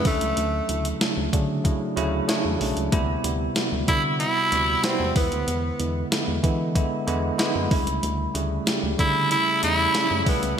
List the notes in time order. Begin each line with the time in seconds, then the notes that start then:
0.05 D2 F#3 A3 C#4 D4, kick, open hi-hat
0.21 C#2, closed hi-hat
0.37 D2, closed hi-hat
0.69 D2 C#3 F#3 A3 E4, closed hi-hat
0.85 closed hi-hat
1.00 C#3 F#3 A3 D4, snare, closed hi-hat
1.17 D2
1.32 C#3 D3 F#3 A3 D4, kick, closed hi-hat
1.64 C#3 F#3 A3 E4, kick, closed hi-hat
1.96 D2 C#3 F#3 A3 E4, closed hi-hat
2.28 C#3 F#3 A3 D4, snare, closed hi-hat
2.45 E2
2.60 B1 C#3 F#3 A3 D4, open hi-hat
2.77 C#2, closed hi-hat
2.92 D2 C3 G3 B3 E4, kick, closed hi-hat
3.23 D2 C3 G3 B3 E4, closed hi-hat
3.56 C3 G3 B3 F#4, snare, closed hi-hat
3.72 D2
3.87 C3 D3 G3 B3 E4 F#4, kick, closed hi-hat
4.20 C3 G3 B3 E4, closed hi-hat
4.52 D2 C3 G3 B3 F#4, closed hi-hat
4.83 C3 G3 B3 C4 E4, snare, closed hi-hat
5.00 E2
5.16 E2 D3 G#3 B3 E4, kick, open hi-hat
5.32 D2, closed hi-hat
5.48 E2, closed hi-hat
5.79 E2 D3 G#3 B3 E4, closed hi-hat
6.11 D3 G#3 B3 E4, snare, closed hi-hat
6.28 E2
6.43 D3 E3 G#3 B3 E4, kick, closed hi-hat
6.75 D3 G#3 B3 E4, kick, closed hi-hat
7.07 E2 D3 G#3 B3 E4, closed hi-hat
7.39 D3 G#3 B3 E4, snare, closed hi-hat
7.55 F#2
7.70 D2 C#3 G3 A3 E4, kick, open hi-hat
7.87 C#2, closed hi-hat
8.03 D2, closed hi-hat
8.34 D2 C#3 G3 A3 E4, closed hi-hat
8.66 C#3 G3 A3 G4, snare, closed hi-hat
8.83 D2
8.98 C#3 D3 G3 A3 E4, kick, closed hi-hat
9.30 C#3 G3 A3 E4, closed hi-hat
9.61 E2 C#3 G3 A3 E4, closed hi-hat
9.94 C#3 G3 A3 C#4, snare, closed hi-hat
10.11 F#2
10.26 B1 C#3 G3 A3 B3 C#4, kick, open hi-hat
10.43 C#2, closed hi-hat